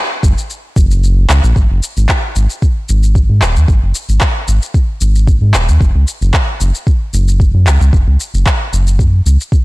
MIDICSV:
0, 0, Header, 1, 3, 480
1, 0, Start_track
1, 0, Tempo, 530973
1, 1409, Time_signature, 4, 2, 24, 8
1, 8720, End_track
2, 0, Start_track
2, 0, Title_t, "Analog synth bass"
2, 0, Program_c, 0, 38
2, 209, Note_on_c, 0, 30, 98
2, 313, Note_off_c, 0, 30, 0
2, 690, Note_on_c, 0, 30, 88
2, 1136, Note_off_c, 0, 30, 0
2, 1170, Note_on_c, 0, 37, 80
2, 1273, Note_off_c, 0, 37, 0
2, 1298, Note_on_c, 0, 34, 89
2, 1389, Note_off_c, 0, 34, 0
2, 1409, Note_on_c, 0, 32, 95
2, 1513, Note_off_c, 0, 32, 0
2, 1540, Note_on_c, 0, 30, 90
2, 1630, Note_off_c, 0, 30, 0
2, 1780, Note_on_c, 0, 32, 90
2, 1870, Note_off_c, 0, 32, 0
2, 2131, Note_on_c, 0, 32, 86
2, 2234, Note_off_c, 0, 32, 0
2, 2616, Note_on_c, 0, 32, 101
2, 2971, Note_off_c, 0, 32, 0
2, 2976, Note_on_c, 0, 44, 94
2, 3088, Note_on_c, 0, 27, 91
2, 3102, Note_off_c, 0, 44, 0
2, 3215, Note_on_c, 0, 39, 105
2, 3229, Note_off_c, 0, 27, 0
2, 3308, Note_off_c, 0, 39, 0
2, 3330, Note_on_c, 0, 32, 92
2, 3433, Note_off_c, 0, 32, 0
2, 3456, Note_on_c, 0, 30, 85
2, 3548, Note_off_c, 0, 30, 0
2, 3694, Note_on_c, 0, 32, 93
2, 3787, Note_off_c, 0, 32, 0
2, 4048, Note_on_c, 0, 32, 93
2, 4153, Note_off_c, 0, 32, 0
2, 4529, Note_on_c, 0, 32, 98
2, 4889, Note_off_c, 0, 32, 0
2, 4894, Note_on_c, 0, 44, 100
2, 5009, Note_on_c, 0, 27, 95
2, 5023, Note_off_c, 0, 44, 0
2, 5141, Note_on_c, 0, 39, 98
2, 5154, Note_off_c, 0, 27, 0
2, 5230, Note_off_c, 0, 39, 0
2, 5249, Note_on_c, 0, 30, 92
2, 5353, Note_off_c, 0, 30, 0
2, 5376, Note_on_c, 0, 37, 87
2, 5468, Note_off_c, 0, 37, 0
2, 5617, Note_on_c, 0, 30, 90
2, 5708, Note_off_c, 0, 30, 0
2, 5970, Note_on_c, 0, 30, 86
2, 6074, Note_off_c, 0, 30, 0
2, 6449, Note_on_c, 0, 30, 96
2, 6812, Note_off_c, 0, 30, 0
2, 6817, Note_on_c, 0, 42, 98
2, 6933, Note_on_c, 0, 37, 92
2, 6947, Note_off_c, 0, 42, 0
2, 7035, Note_off_c, 0, 37, 0
2, 7057, Note_on_c, 0, 37, 103
2, 7149, Note_off_c, 0, 37, 0
2, 7170, Note_on_c, 0, 30, 92
2, 7273, Note_off_c, 0, 30, 0
2, 7294, Note_on_c, 0, 37, 88
2, 7387, Note_off_c, 0, 37, 0
2, 7537, Note_on_c, 0, 30, 85
2, 7629, Note_off_c, 0, 30, 0
2, 7890, Note_on_c, 0, 30, 91
2, 8130, Note_on_c, 0, 42, 91
2, 8143, Note_off_c, 0, 30, 0
2, 8327, Note_off_c, 0, 42, 0
2, 8370, Note_on_c, 0, 37, 103
2, 8473, Note_off_c, 0, 37, 0
2, 8720, End_track
3, 0, Start_track
3, 0, Title_t, "Drums"
3, 210, Note_on_c, 9, 36, 103
3, 216, Note_on_c, 9, 82, 78
3, 300, Note_off_c, 9, 36, 0
3, 306, Note_off_c, 9, 82, 0
3, 342, Note_on_c, 9, 82, 42
3, 433, Note_off_c, 9, 82, 0
3, 455, Note_on_c, 9, 82, 32
3, 545, Note_off_c, 9, 82, 0
3, 690, Note_on_c, 9, 36, 112
3, 695, Note_on_c, 9, 82, 79
3, 780, Note_off_c, 9, 36, 0
3, 786, Note_off_c, 9, 82, 0
3, 823, Note_on_c, 9, 82, 43
3, 913, Note_off_c, 9, 82, 0
3, 935, Note_on_c, 9, 82, 33
3, 1026, Note_off_c, 9, 82, 0
3, 1172, Note_on_c, 9, 39, 80
3, 1176, Note_on_c, 9, 82, 73
3, 1262, Note_off_c, 9, 39, 0
3, 1267, Note_off_c, 9, 82, 0
3, 1302, Note_on_c, 9, 82, 45
3, 1392, Note_off_c, 9, 82, 0
3, 1410, Note_on_c, 9, 36, 99
3, 1415, Note_on_c, 9, 82, 29
3, 1501, Note_off_c, 9, 36, 0
3, 1505, Note_off_c, 9, 82, 0
3, 1655, Note_on_c, 9, 82, 76
3, 1745, Note_off_c, 9, 82, 0
3, 1781, Note_on_c, 9, 82, 41
3, 1871, Note_off_c, 9, 82, 0
3, 1888, Note_on_c, 9, 39, 78
3, 1891, Note_on_c, 9, 36, 88
3, 1893, Note_on_c, 9, 82, 31
3, 1978, Note_off_c, 9, 39, 0
3, 1981, Note_off_c, 9, 36, 0
3, 1983, Note_off_c, 9, 82, 0
3, 2131, Note_on_c, 9, 82, 71
3, 2221, Note_off_c, 9, 82, 0
3, 2259, Note_on_c, 9, 82, 38
3, 2349, Note_off_c, 9, 82, 0
3, 2371, Note_on_c, 9, 36, 98
3, 2373, Note_on_c, 9, 82, 31
3, 2461, Note_off_c, 9, 36, 0
3, 2463, Note_off_c, 9, 82, 0
3, 2611, Note_on_c, 9, 82, 72
3, 2702, Note_off_c, 9, 82, 0
3, 2739, Note_on_c, 9, 82, 40
3, 2829, Note_off_c, 9, 82, 0
3, 2850, Note_on_c, 9, 36, 93
3, 2852, Note_on_c, 9, 82, 31
3, 2940, Note_off_c, 9, 36, 0
3, 2942, Note_off_c, 9, 82, 0
3, 3089, Note_on_c, 9, 39, 73
3, 3093, Note_on_c, 9, 82, 74
3, 3179, Note_off_c, 9, 39, 0
3, 3184, Note_off_c, 9, 82, 0
3, 3219, Note_on_c, 9, 82, 43
3, 3310, Note_off_c, 9, 82, 0
3, 3329, Note_on_c, 9, 36, 98
3, 3332, Note_on_c, 9, 82, 31
3, 3420, Note_off_c, 9, 36, 0
3, 3423, Note_off_c, 9, 82, 0
3, 3570, Note_on_c, 9, 82, 75
3, 3660, Note_off_c, 9, 82, 0
3, 3699, Note_on_c, 9, 82, 41
3, 3789, Note_off_c, 9, 82, 0
3, 3803, Note_on_c, 9, 39, 79
3, 3807, Note_on_c, 9, 82, 33
3, 3810, Note_on_c, 9, 36, 97
3, 3893, Note_off_c, 9, 39, 0
3, 3898, Note_off_c, 9, 82, 0
3, 3900, Note_off_c, 9, 36, 0
3, 4051, Note_on_c, 9, 82, 77
3, 4141, Note_off_c, 9, 82, 0
3, 4178, Note_on_c, 9, 82, 42
3, 4269, Note_off_c, 9, 82, 0
3, 4288, Note_on_c, 9, 36, 98
3, 4291, Note_on_c, 9, 82, 32
3, 4379, Note_off_c, 9, 36, 0
3, 4381, Note_off_c, 9, 82, 0
3, 4531, Note_on_c, 9, 82, 83
3, 4621, Note_off_c, 9, 82, 0
3, 4658, Note_on_c, 9, 82, 42
3, 4749, Note_off_c, 9, 82, 0
3, 4768, Note_on_c, 9, 36, 98
3, 4773, Note_on_c, 9, 82, 33
3, 4859, Note_off_c, 9, 36, 0
3, 4863, Note_off_c, 9, 82, 0
3, 5007, Note_on_c, 9, 39, 75
3, 5011, Note_on_c, 9, 82, 81
3, 5097, Note_off_c, 9, 39, 0
3, 5102, Note_off_c, 9, 82, 0
3, 5141, Note_on_c, 9, 82, 45
3, 5231, Note_off_c, 9, 82, 0
3, 5249, Note_on_c, 9, 36, 109
3, 5256, Note_on_c, 9, 82, 33
3, 5339, Note_off_c, 9, 36, 0
3, 5347, Note_off_c, 9, 82, 0
3, 5492, Note_on_c, 9, 82, 75
3, 5583, Note_off_c, 9, 82, 0
3, 5621, Note_on_c, 9, 82, 39
3, 5712, Note_off_c, 9, 82, 0
3, 5728, Note_on_c, 9, 36, 101
3, 5730, Note_on_c, 9, 39, 74
3, 5734, Note_on_c, 9, 82, 32
3, 5819, Note_off_c, 9, 36, 0
3, 5820, Note_off_c, 9, 39, 0
3, 5825, Note_off_c, 9, 82, 0
3, 5974, Note_on_c, 9, 82, 76
3, 6064, Note_off_c, 9, 82, 0
3, 6101, Note_on_c, 9, 82, 43
3, 6192, Note_off_c, 9, 82, 0
3, 6209, Note_on_c, 9, 36, 105
3, 6212, Note_on_c, 9, 82, 34
3, 6299, Note_off_c, 9, 36, 0
3, 6303, Note_off_c, 9, 82, 0
3, 6452, Note_on_c, 9, 82, 81
3, 6543, Note_off_c, 9, 82, 0
3, 6583, Note_on_c, 9, 82, 47
3, 6673, Note_off_c, 9, 82, 0
3, 6689, Note_on_c, 9, 36, 98
3, 6696, Note_on_c, 9, 82, 35
3, 6779, Note_off_c, 9, 36, 0
3, 6787, Note_off_c, 9, 82, 0
3, 6932, Note_on_c, 9, 39, 75
3, 6936, Note_on_c, 9, 82, 79
3, 7022, Note_off_c, 9, 39, 0
3, 7027, Note_off_c, 9, 82, 0
3, 7064, Note_on_c, 9, 82, 45
3, 7155, Note_off_c, 9, 82, 0
3, 7168, Note_on_c, 9, 36, 108
3, 7176, Note_on_c, 9, 82, 31
3, 7259, Note_off_c, 9, 36, 0
3, 7266, Note_off_c, 9, 82, 0
3, 7415, Note_on_c, 9, 82, 80
3, 7505, Note_off_c, 9, 82, 0
3, 7542, Note_on_c, 9, 82, 39
3, 7632, Note_off_c, 9, 82, 0
3, 7648, Note_on_c, 9, 36, 96
3, 7653, Note_on_c, 9, 39, 73
3, 7657, Note_on_c, 9, 82, 33
3, 7738, Note_off_c, 9, 36, 0
3, 7743, Note_off_c, 9, 39, 0
3, 7748, Note_off_c, 9, 82, 0
3, 7896, Note_on_c, 9, 82, 76
3, 7986, Note_off_c, 9, 82, 0
3, 8021, Note_on_c, 9, 82, 44
3, 8112, Note_off_c, 9, 82, 0
3, 8128, Note_on_c, 9, 36, 99
3, 8135, Note_on_c, 9, 82, 33
3, 8218, Note_off_c, 9, 36, 0
3, 8226, Note_off_c, 9, 82, 0
3, 8375, Note_on_c, 9, 82, 78
3, 8466, Note_off_c, 9, 82, 0
3, 8503, Note_on_c, 9, 82, 43
3, 8594, Note_off_c, 9, 82, 0
3, 8607, Note_on_c, 9, 36, 100
3, 8615, Note_on_c, 9, 82, 31
3, 8697, Note_off_c, 9, 36, 0
3, 8705, Note_off_c, 9, 82, 0
3, 8720, End_track
0, 0, End_of_file